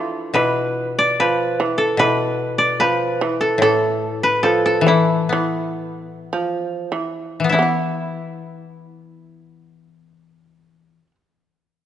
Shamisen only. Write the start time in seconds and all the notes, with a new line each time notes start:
Already playing: E3
0.35 E3
1.20 F3
1.60 E3
2.00 E3
2.81 F3
3.21 E3
3.62 E3
4.44 F3
4.87 E3
5.33 E3
6.33 F3
6.92 E3
7.54 E3
7.59 B3 E4